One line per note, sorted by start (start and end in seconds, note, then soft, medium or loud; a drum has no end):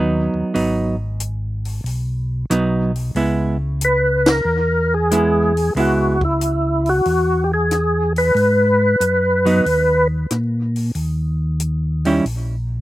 0.00 0.30 D#2 medium
0.00 0.53 F#3 medium
0.00 0.54 B3 medium
0.00 0.54 D#4 medium
0.34 0.44 D#2 soft
0.54 1.81 G#1 medium
0.54 0.95 F#3 medium
0.54 0.95 B3 medium
0.54 0.95 D#4 medium
0.54 open hi-hat soft
1.20 closed hi-hat medium
1.65 open hi-hat soft
1.84 2.45 B1 medium
1.84 open hi-hat soft
2.50 3.11 B1 medium
2.50 2.90 F#3 medium
2.50 2.91 B3 medium
2.50 2.91 D#4 medium
2.50 cross-stick medium
2.50 closed hi-hat medium
2.95 open hi-hat soft
3.15 4.41 C#2 medium
3.15 3.56 G#3 soft
3.15 3.56 B3 medium
3.15 3.56 E4 medium
3.15 open hi-hat soft
3.81 4.28 B4 medium
3.81 closed hi-hat medium
4.26 snare medium
4.26 ride medium
4.30 4.95 A#4 medium
4.45 5.71 E2 medium
4.94 5.73 G#4 medium
5.11 5.51 G#3 medium
5.11 5.52 B3 medium
5.11 5.52 E4 medium
5.11 cross-stick medium
5.11 closed hi-hat medium
5.57 open hi-hat soft
5.75 7.01 C#2 medium
5.75 6.16 G#3 medium
5.75 6.16 B3 medium
5.75 6.17 E4 medium
5.75 open hi-hat soft
5.80 6.24 F#4 medium
6.21 6.89 E4 medium
6.21 kick medium
6.41 closed hi-hat medium
6.86 7.44 F#4 loud
6.86 open hi-hat soft
7.05 8.32 E2 medium
7.05 open hi-hat soft
7.44 7.52 G4 medium
7.54 8.13 G#4 medium
7.71 cross-stick medium
7.71 closed hi-hat medium
8.16 10.07 B4 loud
8.16 open hi-hat soft
8.35 8.96 G#2 medium
8.35 open hi-hat soft
9.00 9.61 F#2 medium
9.00 closed hi-hat medium
9.45 9.63 F#3 medium
9.45 9.64 B3 medium
9.45 9.64 D#4 medium
9.45 open hi-hat soft
9.66 10.26 D#2 medium
9.66 open hi-hat soft
10.30 10.91 A#2 medium
10.30 cross-stick medium
10.30 closed hi-hat medium
10.76 open hi-hat soft
10.95 12.21 D#2 medium
10.95 open hi-hat soft
11.60 closed hi-hat medium
12.05 12.23 D#3 medium
12.05 12.24 G3 medium
12.05 12.24 C#4 medium
12.05 12.24 E4 medium
12.05 open hi-hat soft
12.25 12.81 A#1 medium
12.25 open hi-hat soft